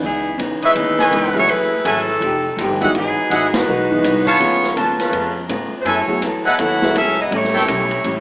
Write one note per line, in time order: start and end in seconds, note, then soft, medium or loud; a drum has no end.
0.02 0.38 C#2 medium
0.02 0.26 C#3 soft
0.02 0.27 E3 soft
0.02 0.38 E3 medium
0.02 0.28 B3 soft
0.02 0.38 B3 medium
0.02 0.28 D#4 medium
0.02 0.38 D#4 medium
0.02 0.38 G#4 medium
0.38 0.60 E2 medium
0.38 0.63 C#3 medium
0.38 0.63 E3 medium
0.38 0.63 B3 medium
0.38 0.64 D#4 medium
0.38 hi-hat pedal medium
0.38 ride medium
0.62 1.32 G#3 medium
0.62 1.32 D#4 medium
0.62 1.32 E4 loud
0.62 0.71 B4 medium
0.62 1.32 B4 loud
0.62 0.71 C#5 medium
0.62 0.71 D#5 medium
0.62 0.71 E5 medium
0.62 muted upright bass stroke soft
0.62 ride soft
0.75 1.11 D#2 medium
0.75 1.00 C#3 soft
0.75 1.01 E3 soft
0.75 1.01 B3 medium
0.75 ride medium
0.79 1.02 D#4 soft
0.98 1.45 B4 medium
0.98 1.46 C#5 medium
0.98 1.46 D#5 medium
0.98 1.46 G#5 medium
0.98 snare soft
1.11 1.47 C#2 medium
1.11 1.36 C#3 medium
1.11 1.37 E3 medium
1.11 1.37 B3 medium
1.11 1.37 D#4 medium
1.11 hi-hat pedal soft
1.11 ride medium
1.34 1.47 F#3 medium
1.34 1.47 A3 medium
1.34 1.49 B3 medium
1.34 1.47 C#4 medium
1.34 1.47 E4 medium
1.34 1.47 G#4 medium
1.34 1.50 C#5 loud
1.48 1.83 F#1 medium
1.48 1.73 F#3 soft
1.48 1.85 A3 medium
1.48 1.73 A3 soft
1.48 1.85 E4 medium
1.48 1.74 E4 soft
1.48 1.85 G#4 medium
1.48 1.74 G#4 soft
1.48 1.85 B4 loud
1.48 ride medium
1.84 2.20 G#1 medium
1.84 2.22 E3 medium
1.84 2.09 F#3 medium
1.84 2.09 A3 medium
1.84 2.22 C#4 medium
1.84 2.10 E4 medium
1.84 2.10 G#4 medium
1.84 2.22 G#4 medium
1.84 2.00 A4 medium
1.84 2.81 A4 medium
1.84 2.00 E5 medium
1.84 2.00 F#5 medium
1.84 2.00 G#5 medium
1.84 hi-hat pedal medium
1.84 ride medium
2.20 2.56 F1 medium
2.20 2.45 F3 soft
2.20 2.46 A3 medium
2.20 2.47 D#4 medium
2.20 2.47 G4 medium
2.20 ride medium
2.57 2.92 G1 medium
2.57 2.83 F3 medium
2.57 2.83 A3 medium
2.57 2.83 D#4 medium
2.57 hi-hat pedal medium
2.57 ride medium
2.61 2.84 G4 medium
2.81 2.93 E3 medium
2.81 2.93 G#3 medium
2.81 2.93 B3 medium
2.81 2.93 D#4 medium
2.81 2.93 F#4 medium
2.81 2.90 G#4 medium
2.81 2.90 D#5 medium
2.81 2.90 E5 medium
2.81 2.90 F#5 loud
2.81 ride soft
2.94 3.15 G#1 medium
2.94 3.18 E3 medium
2.94 3.50 F#3 medium
2.94 3.19 G#3 soft
2.94 3.50 B3 medium
2.94 3.50 D#4 medium
2.94 3.20 D#4 medium
2.94 3.20 F#4 medium
2.94 3.50 G#4 medium
2.94 ride medium
3.18 muted upright bass stroke soft
3.30 3.66 A1 medium
3.30 3.55 E3 medium
3.30 3.55 G#3 medium
3.30 3.56 D#4 medium
3.30 3.56 F#4 medium
3.30 3.46 G#4 medium
3.30 3.46 D#5 medium
3.30 3.46 E5 medium
3.30 3.46 F#5 medium
3.30 hi-hat pedal medium
3.30 ride medium
3.54 4.26 G#3 medium
3.54 4.26 D#4 medium
3.54 4.26 F#4 medium
3.54 4.26 B4 loud
3.54 snare medium
3.54 ride medium
3.67 4.02 B1 medium
3.67 3.91 E3 soft
3.67 3.92 G#3 soft
3.67 3.92 D#4 medium
3.67 3.92 F#4 medium
3.91 4.37 E3 medium
3.91 4.38 G#3 medium
3.91 4.38 B3 medium
3.91 4.38 D#4 medium
3.91 4.38 F#4 medium
4.04 4.39 C2 medium
4.04 4.28 E3 medium
4.04 4.28 G#3 medium
4.04 4.28 D#4 medium
4.04 4.29 F#4 medium
4.04 hi-hat pedal medium
4.04 ride medium
4.26 4.73 B3 medium
4.26 4.73 F4 medium
4.26 4.73 G#4 medium
4.26 4.36 B4 loud
4.26 4.35 C#5 medium
4.26 4.73 C#5 loud
4.26 4.36 F5 medium
4.26 4.36 A5 loud
4.26 kick medium
4.26 ride soft
4.39 4.75 C#2 medium
4.39 4.64 C#3 soft
4.39 5.41 F3 medium
4.39 5.41 G#3 soft
4.39 4.64 A3 soft
4.39 5.41 B3 soft
4.39 4.65 B3 medium
4.39 5.41 C#4 soft
4.39 5.41 F4 medium
4.39 4.65 F4 soft
4.39 ride medium
4.64 snare soft
4.76 5.11 D#2 medium
4.76 5.00 C#3 medium
4.76 5.01 A3 medium
4.76 5.01 B3 medium
4.76 5.01 F4 medium
4.76 5.31 B4 medium
4.76 5.31 C#5 medium
4.76 5.31 F5 medium
4.76 5.31 A5 medium
4.76 hi-hat pedal medium
4.76 ride medium
4.99 5.40 G#3 medium
4.99 5.40 C#4 medium
4.99 5.40 F4 medium
4.99 5.40 B4 medium
4.99 snare soft
4.99 ride medium
5.11 5.48 F2 medium
5.11 5.36 C#3 medium
5.11 5.36 A3 soft
5.11 5.37 B3 medium
5.11 5.38 F4 soft
5.11 ride medium
5.49 5.70 G#2 medium
5.49 5.73 C#3 medium
5.49 5.74 A3 medium
5.49 5.74 B3 medium
5.49 5.74 F4 medium
5.49 hi-hat pedal medium
5.49 ride medium
5.72 muted upright bass stroke soft
5.81 6.09 F#3 soft
5.81 5.86 C5 medium
5.85 6.06 F#2 medium
5.85 6.23 A3 medium
5.85 6.10 B3 soft
5.85 6.10 E4 medium
5.85 6.23 E4 medium
5.85 6.23 G#4 medium
5.85 6.01 A4 medium
5.85 6.11 A4 medium
5.85 6.01 B4 medium
5.85 6.23 C#5 medium
5.85 6.01 E5 medium
5.85 6.01 G#5 medium
5.85 ride medium
6.07 6.20 F#3 medium
6.07 6.20 A3 medium
6.07 6.20 B3 medium
6.07 6.20 E4 medium
6.07 6.20 G#4 medium
6.07 muted upright bass stroke soft
6.07 kick soft
6.22 6.43 E2 medium
6.22 6.46 F#3 medium
6.22 6.47 B3 medium
6.22 6.47 E4 medium
6.22 6.47 A4 medium
6.22 hi-hat pedal medium
6.22 ride medium
6.45 6.58 B3 medium
6.45 6.58 E4 medium
6.45 6.58 G#4 medium
6.45 6.54 A4 medium
6.45 6.54 B4 medium
6.45 6.58 D#5 medium
6.45 6.54 E5 medium
6.45 6.54 F#5 medium
6.45 muted upright bass stroke soft
6.59 6.94 D#2 medium
6.59 6.83 F#3 soft
6.59 6.83 B3 soft
6.59 6.95 E4 medium
6.59 6.83 E4 medium
6.59 6.95 A4 medium
6.59 6.84 A4 soft
6.59 6.95 C#5 medium
6.59 6.95 F#5 loud
6.59 ride medium
6.81 6.93 F#3 medium
6.81 6.93 A3 medium
6.81 6.93 B3 medium
6.81 6.94 E4 medium
6.81 6.94 G#4 medium
6.81 snare medium
6.94 7.29 C#2 medium
6.94 7.19 F#3 medium
6.94 7.19 B3 medium
6.94 7.17 C#4 medium
6.94 7.20 E4 medium
6.94 7.17 G#4 medium
6.94 7.20 A4 medium
6.94 7.17 A4 medium
6.94 7.17 E5 loud
6.94 hi-hat pedal medium
6.94 ride medium
7.20 7.32 B3 medium
7.20 7.32 E4 medium
7.20 7.32 G#4 medium
7.20 7.33 D#5 medium
7.30 7.66 A1 medium
7.30 7.55 A2 soft
7.30 8.20 G3 medium
7.30 7.55 G3 soft
7.30 8.20 A3 medium
7.30 8.20 C#4 medium
7.30 7.56 C#4 soft
7.30 8.20 E4 medium
7.30 7.56 E4 medium
7.30 8.20 E4 medium
7.30 8.20 G4 medium
7.30 8.20 A4 medium
7.30 8.20 C#5 medium
7.30 ride medium
7.44 snare soft
7.54 7.63 A4 medium
7.54 7.63 C#5 medium
7.54 7.63 E5 medium
7.54 7.63 G5 medium
7.54 snare soft
7.66 8.03 B1 medium
7.66 7.91 A2 medium
7.66 7.92 G3 medium
7.66 7.92 C#4 medium
7.66 7.92 E4 medium
7.66 hi-hat pedal medium
7.66 ride medium
7.91 ride soft
8.04 8.20 A1 medium
8.04 8.20 A2 medium
8.04 8.20 G3 medium
8.04 8.20 C#4 medium
8.04 8.20 E4 medium
8.04 ride medium